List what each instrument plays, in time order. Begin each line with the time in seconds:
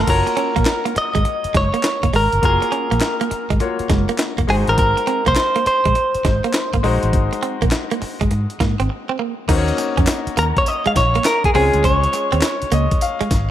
0.07 fingered electric bass F#1, grand piano A#3 F4 F#4 C#5, clean electric guitar A#4, kick, closed hi-hat, crash
0.27 muted clean electric guitar stroke, closed hi-hat
0.37 clean electric guitar C#4, closed hi-hat
0.56 fingered electric bass A#1, clean electric guitar A#3, kick, closed hi-hat
0.65 snare, clap, closed hi-hat
0.85 clean electric guitar A#3, closed hi-hat
0.96 clean electric guitar D#5, muted clean electric guitar stroke, muted fingered electric bass stroke, closed hi-hat
1.15 fingered electric bass G#1, clean electric guitar G#3, kick, closed hi-hat
1.25 muted clean electric guitar stroke, closed hi-hat
1.44 muted fingered electric bass stroke, closed hi-hat
1.54 fingered electric bass F#1, clean electric guitar G#3 C#5, kick, snare, closed hi-hat
1.74 clean electric guitar A#3, closed hi-hat
1.83 muted clean electric guitar stroke, snare, clap, closed hi-hat
2.03 fingered electric bass F#1, clean electric guitar A#3, kick, closed hi-hat
2.13 fingered electric bass G#1, clean electric guitar G#3 A#4, open hi-hat
2.32 fingered electric bass G1, closed hi-hat
2.42 fingered electric bass F#1, grand piano A#3 F4 F#4 G#4, clean electric guitar A#4, kick, closed hi-hat
2.62 muted clean electric guitar stroke, closed hi-hat
2.72 clean electric guitar C#4, closed hi-hat
2.91 fingered electric bass A#1, clean electric guitar A#3, closed hi-hat
3.01 snare, clap, closed hi-hat
3.21 clean electric guitar A#3, closed hi-hat
3.31 muted clean electric guitar stroke, muted fingered electric bass stroke, closed hi-hat
3.50 fingered electric bass G#1, clean electric guitar G#3, kick, closed hi-hat
3.60 grand piano A#3 F4 F#4 C#5, muted clean electric guitar stroke, closed hi-hat
3.79 muted fingered electric bass stroke, closed hi-hat
3.89 fingered electric bass F#1, clean electric guitar G#3, kick, snare, closed hi-hat
4.09 clean electric guitar A#3, closed hi-hat
4.18 muted clean electric guitar stroke, snare, clap, closed hi-hat
4.38 fingered electric bass F#1, clean electric guitar A#3, kick, closed hi-hat
4.47 fingered electric bass G#1, grand piano G#3 D#4 F#4 C5, clean electric guitar G#3 G#4, open hi-hat
4.67 fingered electric bass A1, clean electric guitar A#4, closed hi-hat
4.78 fingered electric bass G#1, clean electric guitar A#4, kick, closed hi-hat
4.97 muted clean electric guitar stroke, closed hi-hat
5.07 clean electric guitar C4, closed hi-hat
5.26 fingered electric bass C2, clean electric guitar A#3 C5, kick, closed hi-hat
5.36 snare, clap, closed hi-hat
5.56 clean electric guitar A#3, closed hi-hat
5.66 clean electric guitar C5, muted clean electric guitar stroke, muted fingered electric bass stroke, closed hi-hat
5.85 fingered electric bass A#1, clean electric guitar G#3, kick, closed hi-hat
5.95 muted clean electric guitar stroke, closed hi-hat
6.15 muted fingered electric bass stroke, closed hi-hat
6.25 fingered electric bass G#1, clean electric guitar G#3, kick, snare, closed hi-hat
6.44 clean electric guitar A#3, closed hi-hat
6.53 muted clean electric guitar stroke, snare, clap, closed hi-hat
6.73 fingered electric bass G#1, clean electric guitar A#3, kick, closed hi-hat
6.83 fingered electric bass A#1, grand piano G#3 D#4 F#4 C5, clean electric guitar G#3, open hi-hat
7.03 fingered electric bass A1, closed hi-hat
7.13 fingered electric bass G#1, kick, closed hi-hat
7.33 muted clean electric guitar stroke, closed hi-hat
7.43 clean electric guitar C4, closed hi-hat
7.62 fingered electric bass A#1, clean electric guitar A#3, kick, closed hi-hat
7.71 snare, clap, closed hi-hat
7.91 clean electric guitar A#3, closed hi-hat
8.02 muted clean electric guitar stroke, muted fingered electric bass stroke, open hi-hat
8.21 fingered electric bass G#1, clean electric guitar G#3, kick, closed hi-hat
8.31 fingered electric bass G#2, muted clean electric guitar stroke, closed hi-hat
8.50 closed hi-hat
8.60 fingered electric bass G#2, clean electric guitar A#3, kick, snare, closed hi-hat
8.80 fingered electric bass G#1, clean electric guitar C4, closed hi-hat
8.90 muted clean electric guitar stroke
9.09 clean electric guitar C4
9.19 clean electric guitar A#3
9.48 fingered electric bass D#2, grand piano A#3 C#4 D#4 F#4 C5, clean electric guitar D#4, kick, closed hi-hat, crash, tambourine
9.57 grand piano C#5
9.68 closed hi-hat
9.78 muted clean electric guitar stroke, clap, closed hi-hat, tambourine
9.97 fingered electric bass F2, clean electric guitar C#4, kick, closed hi-hat
10.07 snare, clap, closed hi-hat, tambourine
10.27 muted fingered electric bass stroke, closed hi-hat
10.37 fingered electric bass D#2, clean electric guitar A#3 A#4, closed hi-hat, tambourine
10.57 clean electric guitar C#5, kick, closed hi-hat
10.66 clean electric guitar D#5, closed hi-hat, tambourine
10.86 clean electric guitar G#3 F5, muted fingered electric bass stroke, closed hi-hat
10.96 fingered electric bass A#1, clean electric guitar C#5, muted clean electric guitar stroke, kick, snare, closed hi-hat, tambourine
11.15 clean electric guitar A#3, closed hi-hat
11.24 clean electric guitar A#4, snare, clap, closed hi-hat, tambourine
11.44 clean electric guitar G#4, kick, closed hi-hat
11.54 fingered electric bass C#2, grand piano G#3 C#4 F4 G#4 C#5, clean electric guitar C4 G#4, open hi-hat
11.74 fingered electric bass D2, closed hi-hat
11.84 fingered electric bass C#2, clean electric guitar C#4 C#5, kick, closed hi-hat, tambourine
12.04 closed hi-hat
12.13 muted clean electric guitar stroke, clap, closed hi-hat, tambourine
12.32 fingered electric bass D#2, clean electric guitar C4, closed hi-hat
12.41 snare, clap, closed hi-hat, tambourine
12.62 muted fingered electric bass stroke, closed hi-hat
12.71 fingered electric bass C#2, clean electric guitar A#3, grand piano D#5, closed hi-hat, tambourine
12.91 kick, closed hi-hat
13.01 grand piano F5, closed hi-hat, tambourine
13.21 clean electric guitar G#3, muted fingered electric bass stroke, closed hi-hat
13.31 fingered electric bass G#1, muted clean electric guitar stroke, kick, snare, closed hi-hat, tambourine